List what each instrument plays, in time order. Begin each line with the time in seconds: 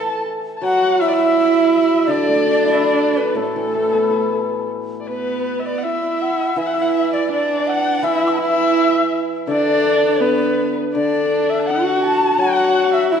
Already playing: hammered dulcimer E3, horsehead fiddle A4, xiao A5
0.08 erhu A5
0.57 erhu A5
0.62 hammered dulcimer F#3, horsehead fiddle F#4, erhu F#5, xiao F#5
1.01 horsehead fiddle E4, erhu E5, xiao E5
1.09 erhu D5
1.14 erhu E5
1.75 erhu E5
2.02 erhu E5
2.07 hammered dulcimer D3, horsehead fiddle D4, xiao D5, erhu D5
2.27 hammered dulcimer A3
2.46 hammered dulcimer D4
2.66 hammered dulcimer E4
2.74 erhu E5
2.83 hammered dulcimer A4, erhu D5
3.17 xiao B4, erhu B4
3.35 hammered dulcimer A2, xiao A4
3.39 horsehead fiddle A3, erhu A4
3.56 hammered dulcimer E3
3.74 hammered dulcimer A3
3.93 hammered dulcimer B3
4.10 hammered dulcimer E4
5.00 erhu D5
5.06 horsehead fiddle B3, erhu B4, xiao B4
5.60 erhu E5
5.65 xiao D5, erhu D5
5.78 erhu F#5
5.83 horsehead fiddle E4, xiao E5, erhu E5
6.22 xiao F#5
6.56 hammered dulcimer E3, horsehead fiddle E4, xiao E5, erhu E5
6.66 erhu F#5
6.74 erhu E5
6.82 erhu F#5
6.89 erhu E5
7.14 erhu D5, xiao D5
7.31 horsehead fiddle D4, erhu D5, xiao D5
7.67 xiao F#5, erhu F#5
8.02 hammered dulcimer E3, horsehead fiddle E4, xiao E5, erhu E5
8.27 xiao B5 D6
8.33 xiao A5
8.38 horsehead fiddle E4, xiao E5 F#5
8.43 erhu E5
9.47 hammered dulcimer D3, horsehead fiddle D4, xiao D5, erhu D5
10.21 horsehead fiddle B3, erhu B4, xiao B4
10.94 hammered dulcimer D3, horsehead fiddle D4, erhu D5, xiao D5
11.49 erhu E5, xiao E5
11.59 erhu A5
11.66 horsehead fiddle F#4, erhu F#5, xiao F#5
12.04 erhu A5, xiao A5
12.38 hammered dulcimer F#3, horsehead fiddle F#4, erhu F#5, xiao F#5
12.94 erhu E5, xiao E5
13.10 horsehead fiddle E4, xiao E5, erhu E5